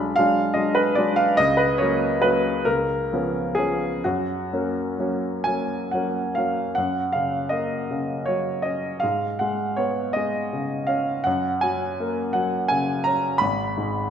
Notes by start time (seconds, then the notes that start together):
Already playing: B1 F#3 G#3 D4 B5
0.16 F#3 G#3 D4 F5
0.54 F#3 G#3 D4 D#5
0.75 B4
0.95 F#3 G#3 D4 D5
1.16 F5
1.37 C#2 D#5
1.57 B4
1.78 F#3 A#3 C#4 C#5
2.22 F#3 A#3 C#4 B4
2.65 C#2 A#4
3.13 F3 B3 C#4
3.55 F3 B3 C#4 G#4
4.04 F#2 F#4
4.53 F#3 A#3 C#4
4.99 F#3 A#3 C#4
5.44 F#3 A#3 C#4 G#5
5.91 F#3 A#3 C#4 F#5
6.35 F#3 A#3 C#4 F5
6.75 F#2 F#5
7.12 C#3 F5
7.49 A#3 D#5
7.91 C#3
8.26 F#3 C#5
8.62 C#4 D#5
9.00 G#2 F5
9.39 G#3 F#5
9.77 B3 C#5
10.13 G#3 D#5
10.53 C#3
10.87 C#4 F5
11.24 F#2 F#5
11.61 F#3 G#5
12.00 A#3
12.33 F#3 F#5
12.68 C#3 G#5
13.04 C#4 A#5
13.38 G#1 B5
13.77 G#2